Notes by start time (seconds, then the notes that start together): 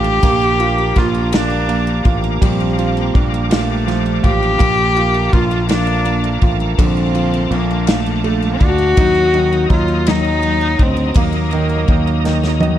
Already playing: A1 F3 A3 D4 F4 G4 F5 A5 A#5 D6
0.04 A3
0.23 A#1 F3 A#3 D4 G4 F5, kick, ride
0.42 A#3
0.60 F3 F4, ride
0.78 A#3
0.96 A#1 A#3 D4 F4, kick, snare, ride
1.15 A#3
1.32 F3 D4 F4, snare, ride
1.50 A#3
1.69 F3 A#3, ride
1.87 A#3
2.05 A1 D4 F4, kick, ride
2.24 A#3
2.41 A#1 F3 G3 C4 D4, kick, ride
2.60 A#3
2.78 F3 F4, ride
2.97 A#3
3.14 A#1 A#3 D4, kick, ride
3.34 A#3
3.50 F3 A3 D4 F4, snare, ride
3.87 F3, snare, ride
4.06 A#3
4.23 A1 D4 F4 G4, kick, ride
4.43 A#3
4.58 A#1 F3 A#3 D4 A5 A#5 D6, kick, ride
4.78 A3
4.97 F3 F4, ride
5.14 A3
5.33 A#1 A#3 D4 F4, kick, ride
5.51 A3
5.69 F3 D4 F4, snare, ride
5.87 A3
6.05 F3 A#3, ride
6.24 A3
6.42 A1 D4 F4, kick, ride
6.60 A3
6.78 A#1 D3 F3 C4 D4, kick, ride
6.97 A3
7.15 F3 F4, ride
7.34 A3
7.50 A#1 A#2 A#3 D4, ride
7.71 A3
7.87 F3 A3 D4 F5, snare, ride
8.06 A3
8.24 A3, ride
8.42 A3
8.60 D2 D4 F#4, kick, ride
8.78 A3
8.97 D#2 F#3 D#4 D#5 D#6, kick, ride
9.15 A#3
9.33 D#3 F#3, ride
9.53 A#3
9.70 D#2 F#3 D#4 F4, kick, ride
9.88 A#3
10.07 F#3 D#4, snare, ride
10.25 A#3
10.42 F#3, ride
10.61 A#3
10.79 D2 C4 D#4, kick, ride
10.97 A#3
11.14 D#2 F#3 A#3 D#4, kick, ride
11.33 A#3
11.51 D#3 F#3, ride
11.69 A#3
11.88 D#2 D#3 D#4, kick, ride
12.07 A#3
12.24 D#3 F#3 D#4, snare
12.43 A#3, snare
12.60 D#3 F#3 D#5, high tom